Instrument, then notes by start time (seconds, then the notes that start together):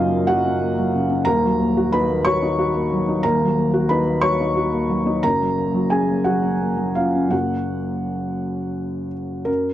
felt piano
Already playing: F#1 F#2 F#3 A#3 C#4 D#4 F4 D#5 F5
0.12 A#3
0.27 F#3 F#4 F#5
0.45 C#4
0.61 A#3
0.78 F#3
0.95 C#3
1.09 C#4
1.25 D#1 D#2 A#4 A#5
1.44 F#3
1.60 A#3
1.77 F#4
1.92 D#4 B4 B5
2.10 A#3
2.25 F#4 C#5 C#6
2.42 D#4
2.59 F#4
2.74 A#3
2.92 F#3
3.08 D#4
3.23 D#1 D#2 A#4 A#5
3.42 F#3
3.59 A#3
3.74 F#4
3.89 D#4 B4 B5
4.07 A#3
4.21 F#4 C#5 C#6
4.41 D#4
4.57 F#4
4.72 A#3
4.89 F#3
5.06 D#4
5.23 F#1 F#2 A#4 A#5
5.41 F#3
5.58 A#3
5.74 F#3
5.90 C#4 G#4 G#5
6.08 A#3
6.24 F#3 F#4 F#5
6.43 C#4
6.61 A#3
6.77 F#3
6.95 C#3 F4 F5
7.15 C#4
7.28 F#1 F#2 F#3 A#3 C#4 F#5
7.32 F#4
9.45 F#2 A#4